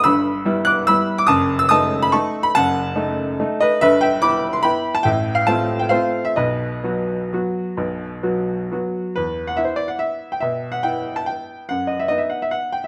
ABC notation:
X:1
M:3/4
L:1/16
Q:1/4=141
K:Em
V:1 name="Grand piano"
[be']6 [d'f']2 [be']3 d' | [a^d']3 e' [ad']3 b [a^c']3 b | [fa]8- [fa]2 [B^d]2 | [Be]2 [eg]2 [bd']3 c' [gb]3 a |
[eg]3 =f [fa]3 g [cf]3 e | [B^d]12- | [B^d]8- [Bd]2 z2 | B3 f e c d f e3 g |
e3 f g3 a g4 | f2 ^d e d e f e f2 g e |]
V:2 name="Grand piano"
[G,,,G,,]4 [G,B,E]4 [G,B,E]4 | [F,,,F,,]4 [A,^D]4 [A,D]4 | [F,,,F,,]4 [A,^D]4 [A,D]4 | [G,,,G,,]4 [B,E]4 [B,E]4 |
[A,,,A,,]4 [A,C=F]4 [A,CF]4 | [B,,,B,,]4 [F,B,F]4 [F,B,F]4 | [B,,,B,,]4 [F,B,F]4 [F,B,F]4 | E,,4 [B,E]8 |
B,,4 [B,E]8 | F,,4 [B,^D]8 |]